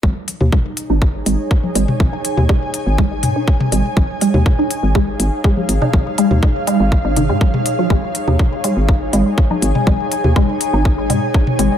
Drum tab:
HH |--o---o---o---o-|--o---o---o---o-|--o---o---o---o-|--o---o---o---o-|
T2 |---o-----------o|---o------o--o--|---o-----------o|---o------o--o--|
CG |o------------o--|o---------------|o------------o--|o---------------|
BD |o---o---o---o---|o---o---o---o---|o---o---o---o---|o---o---o---o---|

HH |--o---o---o---o-|--o---o---o---o-|
T2 |---o-----------o|---o------o--o--|
CG |o------------o--|o---------------|
BD |o---o---o---o---|o---o---o---o---|